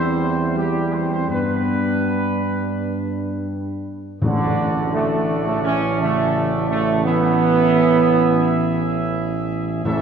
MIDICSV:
0, 0, Header, 1, 6, 480
1, 0, Start_track
1, 0, Tempo, 728155
1, 854, Time_signature, 4, 2, 24, 8
1, 2783, Tempo, 703400
1, 6737, End_track
2, 0, Start_track
2, 0, Title_t, "Trumpet section"
2, 0, Program_c, 0, 61
2, 0, Note_on_c, 0, 72, 79
2, 347, Note_off_c, 0, 72, 0
2, 377, Note_on_c, 0, 67, 64
2, 598, Note_off_c, 0, 67, 0
2, 612, Note_on_c, 0, 72, 66
2, 732, Note_off_c, 0, 72, 0
2, 739, Note_on_c, 0, 72, 62
2, 849, Note_off_c, 0, 72, 0
2, 854, Note_on_c, 0, 71, 76
2, 2273, Note_off_c, 0, 71, 0
2, 2786, Note_on_c, 0, 66, 72
2, 2787, Note_on_c, 0, 74, 73
2, 3242, Note_off_c, 0, 66, 0
2, 3243, Note_off_c, 0, 74, 0
2, 3275, Note_on_c, 0, 74, 73
2, 3276, Note_on_c, 0, 66, 73
2, 4688, Note_off_c, 0, 66, 0
2, 4688, Note_off_c, 0, 74, 0
2, 4710, Note_on_c, 0, 76, 79
2, 4713, Note_on_c, 0, 68, 75
2, 6596, Note_off_c, 0, 76, 0
2, 6597, Note_off_c, 0, 68, 0
2, 6622, Note_on_c, 0, 69, 78
2, 6622, Note_on_c, 0, 76, 75
2, 6737, Note_off_c, 0, 69, 0
2, 6737, Note_off_c, 0, 76, 0
2, 6737, End_track
3, 0, Start_track
3, 0, Title_t, "Trombone section"
3, 0, Program_c, 1, 61
3, 0, Note_on_c, 1, 55, 83
3, 0, Note_on_c, 1, 60, 84
3, 828, Note_off_c, 1, 60, 0
3, 850, Note_on_c, 1, 62, 65
3, 2538, Note_off_c, 1, 62, 0
3, 2541, Note_off_c, 1, 55, 0
3, 2777, Note_on_c, 1, 50, 100
3, 3237, Note_off_c, 1, 50, 0
3, 3265, Note_on_c, 1, 57, 89
3, 3604, Note_off_c, 1, 57, 0
3, 3630, Note_on_c, 1, 57, 87
3, 3743, Note_off_c, 1, 57, 0
3, 3750, Note_on_c, 1, 61, 103
3, 3975, Note_off_c, 1, 61, 0
3, 3999, Note_on_c, 1, 57, 100
3, 4449, Note_off_c, 1, 57, 0
3, 4471, Note_on_c, 1, 57, 98
3, 4694, Note_off_c, 1, 57, 0
3, 4714, Note_on_c, 1, 59, 111
3, 6360, Note_off_c, 1, 59, 0
3, 6620, Note_on_c, 1, 52, 99
3, 6737, Note_off_c, 1, 52, 0
3, 6737, End_track
4, 0, Start_track
4, 0, Title_t, "French horn section"
4, 0, Program_c, 2, 60
4, 0, Note_on_c, 2, 60, 105
4, 368, Note_on_c, 2, 55, 85
4, 376, Note_off_c, 2, 60, 0
4, 593, Note_off_c, 2, 55, 0
4, 615, Note_on_c, 2, 60, 81
4, 732, Note_off_c, 2, 60, 0
4, 740, Note_on_c, 2, 60, 76
4, 849, Note_off_c, 2, 60, 0
4, 851, Note_on_c, 2, 59, 88
4, 2271, Note_off_c, 2, 59, 0
4, 2774, Note_on_c, 2, 42, 82
4, 3236, Note_off_c, 2, 42, 0
4, 3256, Note_on_c, 2, 50, 84
4, 3599, Note_off_c, 2, 50, 0
4, 3615, Note_on_c, 2, 49, 76
4, 3735, Note_off_c, 2, 49, 0
4, 3746, Note_on_c, 2, 52, 91
4, 3973, Note_off_c, 2, 52, 0
4, 4004, Note_on_c, 2, 49, 83
4, 4460, Note_off_c, 2, 49, 0
4, 4468, Note_on_c, 2, 49, 82
4, 4692, Note_off_c, 2, 49, 0
4, 4714, Note_on_c, 2, 52, 101
4, 6360, Note_off_c, 2, 52, 0
4, 6620, Note_on_c, 2, 45, 86
4, 6737, Note_off_c, 2, 45, 0
4, 6737, End_track
5, 0, Start_track
5, 0, Title_t, "Timpani"
5, 0, Program_c, 3, 47
5, 2779, Note_on_c, 3, 45, 98
5, 3481, Note_off_c, 3, 45, 0
5, 6625, Note_on_c, 3, 45, 105
5, 6737, Note_off_c, 3, 45, 0
5, 6737, End_track
6, 0, Start_track
6, 0, Title_t, "Tuba"
6, 0, Program_c, 4, 58
6, 0, Note_on_c, 4, 40, 87
6, 851, Note_on_c, 4, 43, 71
6, 861, Note_off_c, 4, 40, 0
6, 2565, Note_off_c, 4, 43, 0
6, 2783, Note_on_c, 4, 33, 81
6, 6596, Note_off_c, 4, 33, 0
6, 6621, Note_on_c, 4, 33, 90
6, 6737, Note_off_c, 4, 33, 0
6, 6737, End_track
0, 0, End_of_file